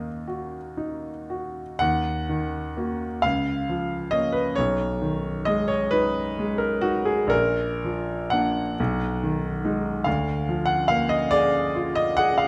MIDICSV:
0, 0, Header, 1, 2, 480
1, 0, Start_track
1, 0, Key_signature, -6, "minor"
1, 0, Tempo, 1025641
1, 848, Time_signature, 12, 3, 24, 8
1, 848, Tempo, 938967
1, 1808, Tempo, 899550
1, 3248, Tempo, 934579
1, 3728, Tempo, 1011804
1, 4208, Tempo, 891530
1, 4688, Tempo, 846262
1, 6533, End_track
2, 0, Start_track
2, 0, Title_t, "Grand piano"
2, 0, Program_c, 0, 0
2, 0, Control_c, 0, 64, 127
2, 0, Note_on_c, 0, 39, 58
2, 0, Note_on_c, 0, 51, 49
2, 0, Note_on_c, 0, 58, 47
2, 0, Note_on_c, 0, 75, 74
2, 121, Note_off_c, 0, 75, 0
2, 129, Note_on_c, 0, 66, 50
2, 267, Note_off_c, 0, 58, 0
2, 362, Note_on_c, 0, 63, 47
2, 511, Note_off_c, 0, 66, 0
2, 608, Note_on_c, 0, 66, 51
2, 755, Note_off_c, 0, 63, 0
2, 828, Note_off_c, 0, 39, 0
2, 838, Note_on_c, 0, 78, 98
2, 846, Note_off_c, 0, 66, 0
2, 848, Note_on_c, 0, 39, 67
2, 855, Control_c, 0, 64, 0
2, 861, Note_off_c, 0, 51, 0
2, 934, Control_c, 0, 64, 127
2, 1095, Note_on_c, 0, 51, 54
2, 1338, Note_on_c, 0, 58, 47
2, 1340, Note_on_c, 0, 66, 47
2, 1479, Note_off_c, 0, 51, 0
2, 1553, Note_off_c, 0, 39, 0
2, 1555, Note_off_c, 0, 58, 0
2, 1556, Note_off_c, 0, 66, 0
2, 1568, Note_off_c, 0, 78, 0
2, 1569, Note_on_c, 0, 77, 91
2, 1579, Note_on_c, 0, 37, 65
2, 1583, Control_c, 0, 64, 0
2, 1672, Control_c, 0, 64, 127
2, 1810, Note_on_c, 0, 53, 53
2, 2031, Note_on_c, 0, 75, 89
2, 2042, Note_off_c, 0, 77, 0
2, 2042, Note_on_c, 0, 58, 41
2, 2045, Note_on_c, 0, 61, 49
2, 2147, Note_on_c, 0, 71, 76
2, 2155, Note_off_c, 0, 75, 0
2, 2187, Note_off_c, 0, 53, 0
2, 2257, Note_off_c, 0, 58, 0
2, 2258, Note_off_c, 0, 61, 0
2, 2261, Note_off_c, 0, 37, 0
2, 2270, Note_on_c, 0, 73, 94
2, 2272, Note_off_c, 0, 71, 0
2, 2283, Note_on_c, 0, 35, 65
2, 2287, Control_c, 0, 64, 0
2, 2370, Control_c, 0, 64, 127
2, 2517, Note_on_c, 0, 51, 52
2, 2749, Note_on_c, 0, 75, 88
2, 2757, Note_off_c, 0, 73, 0
2, 2761, Note_on_c, 0, 56, 57
2, 2868, Note_on_c, 0, 73, 85
2, 2878, Note_off_c, 0, 75, 0
2, 2908, Note_off_c, 0, 51, 0
2, 2991, Note_on_c, 0, 71, 97
2, 2998, Note_off_c, 0, 73, 0
2, 3002, Note_on_c, 0, 63, 52
2, 3151, Note_off_c, 0, 56, 0
2, 3249, Note_on_c, 0, 56, 58
2, 3347, Note_on_c, 0, 70, 76
2, 3354, Note_off_c, 0, 71, 0
2, 3383, Note_off_c, 0, 63, 0
2, 3466, Note_on_c, 0, 66, 90
2, 3471, Note_off_c, 0, 70, 0
2, 3478, Note_on_c, 0, 63, 56
2, 3590, Note_on_c, 0, 68, 79
2, 3593, Note_off_c, 0, 66, 0
2, 3625, Note_off_c, 0, 56, 0
2, 3702, Note_on_c, 0, 34, 74
2, 3707, Note_off_c, 0, 35, 0
2, 3715, Note_on_c, 0, 70, 94
2, 3722, Note_off_c, 0, 68, 0
2, 3726, Note_off_c, 0, 63, 0
2, 3735, Control_c, 0, 64, 0
2, 3831, Control_c, 0, 64, 127
2, 3976, Note_on_c, 0, 53, 55
2, 4193, Note_on_c, 0, 78, 93
2, 4201, Note_off_c, 0, 70, 0
2, 4205, Note_on_c, 0, 58, 48
2, 4207, Note_on_c, 0, 62, 53
2, 4358, Note_off_c, 0, 53, 0
2, 4417, Note_off_c, 0, 34, 0
2, 4429, Note_off_c, 0, 58, 0
2, 4431, Note_off_c, 0, 62, 0
2, 4458, Note_on_c, 0, 35, 76
2, 4461, Control_c, 0, 64, 0
2, 4550, Control_c, 0, 64, 127
2, 4692, Note_on_c, 0, 51, 59
2, 4926, Note_on_c, 0, 56, 54
2, 4929, Note_on_c, 0, 63, 52
2, 5072, Note_off_c, 0, 51, 0
2, 5139, Note_off_c, 0, 56, 0
2, 5141, Note_off_c, 0, 63, 0
2, 5144, Note_off_c, 0, 35, 0
2, 5152, Note_on_c, 0, 77, 79
2, 5155, Note_off_c, 0, 78, 0
2, 5162, Note_on_c, 0, 38, 71
2, 5172, Control_c, 0, 64, 0
2, 5271, Control_c, 0, 64, 127
2, 5404, Note_on_c, 0, 53, 61
2, 5498, Note_on_c, 0, 78, 90
2, 5509, Note_off_c, 0, 77, 0
2, 5625, Note_off_c, 0, 78, 0
2, 5626, Note_on_c, 0, 77, 94
2, 5639, Note_on_c, 0, 58, 56
2, 5746, Note_on_c, 0, 75, 88
2, 5749, Note_off_c, 0, 77, 0
2, 5780, Note_off_c, 0, 53, 0
2, 5868, Note_on_c, 0, 74, 106
2, 5870, Note_off_c, 0, 75, 0
2, 5879, Note_on_c, 0, 68, 62
2, 6024, Note_off_c, 0, 58, 0
2, 6120, Note_on_c, 0, 65, 63
2, 6235, Note_on_c, 0, 75, 93
2, 6241, Note_off_c, 0, 74, 0
2, 6271, Note_off_c, 0, 68, 0
2, 6356, Note_on_c, 0, 78, 105
2, 6362, Note_off_c, 0, 75, 0
2, 6369, Note_on_c, 0, 68, 57
2, 6475, Note_on_c, 0, 77, 85
2, 6481, Note_off_c, 0, 78, 0
2, 6510, Note_off_c, 0, 65, 0
2, 6533, Note_off_c, 0, 38, 0
2, 6533, Note_off_c, 0, 68, 0
2, 6533, Note_off_c, 0, 77, 0
2, 6533, End_track
0, 0, End_of_file